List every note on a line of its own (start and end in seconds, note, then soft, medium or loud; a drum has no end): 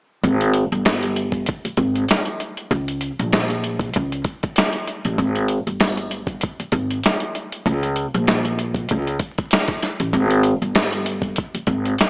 0.24 0.62 G#1 loud
0.24 kick loud
0.24 closed hi-hat medium
0.41 closed hi-hat medium
0.54 closed hi-hat medium
0.72 1.44 G1 medium
0.72 closed hi-hat soft
0.85 snare loud
0.85 snare medium
0.85 closed hi-hat medium
1.03 closed hi-hat soft
1.16 closed hi-hat medium
1.32 kick medium
1.32 closed hi-hat soft
1.46 kick loud
1.46 closed hi-hat loud
1.65 muted upright bass stroke soft
1.65 closed hi-hat medium
1.77 2.03 G#1 medium
1.77 kick medium
1.77 closed hi-hat medium
1.96 closed hi-hat medium
2.08 snare loud
2.08 snare medium
2.08 closed hi-hat medium
2.25 closed hi-hat soft
2.40 closed hi-hat medium
2.57 closed hi-hat medium
2.71 3.09 C#2 loud
2.71 kick loud
2.71 closed hi-hat medium
2.88 closed hi-hat medium
3.01 closed hi-hat medium
3.19 3.91 A#1 medium
3.19 closed hi-hat soft
3.32 snare loud
3.32 snare medium
3.32 closed hi-hat medium
3.50 closed hi-hat soft
3.64 closed hi-hat medium
3.79 kick medium
3.79 closed hi-hat soft
3.94 4.21 C#2 medium
3.94 kick medium
3.94 closed hi-hat loud
4.12 closed hi-hat medium
4.24 kick medium
4.24 closed hi-hat medium
4.43 kick medium
4.43 closed hi-hat medium
4.56 snare loud
4.56 snare medium
4.56 closed hi-hat medium
4.73 closed hi-hat soft
4.87 closed hi-hat medium
5.05 5.16 A1 medium
5.05 closed hi-hat medium
5.18 5.57 G#1 loud
5.18 kick loud
5.18 closed hi-hat medium
5.35 closed hi-hat medium
5.48 closed hi-hat medium
5.67 6.39 G1 medium
5.67 closed hi-hat soft
5.80 snare loud
5.80 snare medium
5.80 closed hi-hat medium
5.97 closed hi-hat soft
6.11 closed hi-hat medium
6.27 kick medium
6.27 closed hi-hat soft
6.41 kick medium
6.41 closed hi-hat loud
6.60 muted upright bass stroke soft
6.60 closed hi-hat medium
6.72 6.98 G#1 medium
6.72 kick medium
6.72 closed hi-hat medium
6.91 closed hi-hat medium
7.03 snare loud
7.03 snare medium
7.03 closed hi-hat medium
7.20 closed hi-hat soft
7.35 closed hi-hat medium
7.52 closed hi-hat medium
7.66 8.04 C#2 loud
7.66 kick loud
7.66 closed hi-hat medium
7.83 closed hi-hat medium
7.96 closed hi-hat medium
8.14 8.86 A#1 loud
8.14 closed hi-hat soft
8.27 snare loud
8.27 snare medium
8.27 closed hi-hat medium
8.45 closed hi-hat soft
8.59 closed hi-hat medium
8.74 kick medium
8.74 closed hi-hat soft
8.89 9.15 C#2 medium
8.89 kick medium
8.89 closed hi-hat loud
9.07 closed hi-hat medium
9.19 kick medium
9.19 closed hi-hat medium
9.38 kick medium
9.38 closed hi-hat medium
9.51 snare loud
9.51 snare medium
9.51 closed hi-hat medium
9.68 kick medium
9.68 closed hi-hat soft
9.83 snare soft
9.83 closed hi-hat medium
10.00 10.11 A1 medium
10.00 closed hi-hat medium
10.13 10.52 G#1 loud
10.13 kick loud
10.13 closed hi-hat medium
10.30 closed hi-hat medium
10.43 closed hi-hat medium
10.62 11.33 G1 medium
10.62 closed hi-hat soft
10.75 snare loud
10.75 snare medium
10.75 closed hi-hat medium
10.92 closed hi-hat soft
11.06 closed hi-hat medium
11.22 kick medium
11.22 closed hi-hat soft
11.36 kick medium
11.36 closed hi-hat loud
11.54 muted upright bass stroke soft
11.54 closed hi-hat medium
11.67 11.92 G#1 medium
11.67 kick medium
11.67 closed hi-hat medium
11.85 closed hi-hat medium
11.98 snare loud
11.98 snare medium
11.98 closed hi-hat medium